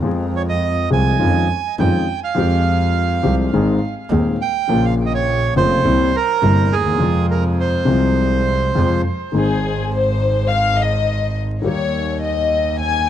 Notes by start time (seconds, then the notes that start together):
0.02 F2 F3 G#3 C4 G#4
0.36 C#5
0.49 D#5
0.90 C2 C3 F3 G#3 C4 G#4 G#5
1.19 F2 D#3 F3 G#3 C#4 F4
1.78 F2 D#3 F3 G#3 C#4 F4 G5
2.24 F5
2.35 F2 F3 G#3 C4 G4
3.23 C2 C3 F3 G#3 C4 G4
3.53 G#1 G#2 D#3 G#3 C4 G#4
4.10 D#1 D#2 D#3 G#3 C4 G#4
4.42 G5
4.68 A#1 A#2 C#3 F3 A#3 F4
4.85 F5
5.06 D#5
5.15 C#5
5.55 F1 F2 C#3 F3 A#3 F4 C5
5.84 C2 C3 G3 A#3 E4
6.16 A#4
6.42 G1 G2 C3 G3 A#3 E4
6.72 D#2 G#4
6.78 D2
6.85 D#2
6.92 E2
6.98 F2 C3 F3 G#3 F4
7.31 A#4
7.61 C5
7.85 C2 C3 F3 G#3 F4
8.75 F2 C3 F3 G#3 F4
9.32 G#1 G#2 D#3 G#3 C4 G#4
9.36 G#4
9.92 C5
10.48 F5
10.79 D#5
11.62 D#2 D#3 G3 A#3 C#5
11.66 G4
12.22 D#5
12.78 G#5